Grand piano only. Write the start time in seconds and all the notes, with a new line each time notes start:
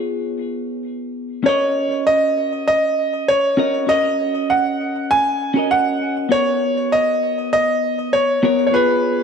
1.46 C#5
2.07 D#5
2.68 D#5
3.28 C#5
3.89 D#5
4.50 F#5
5.11 G#5
5.71 F#5
6.32 C#5
6.92 D#5
7.53 D#5
8.13 C#5
8.67 C#5
8.74 B4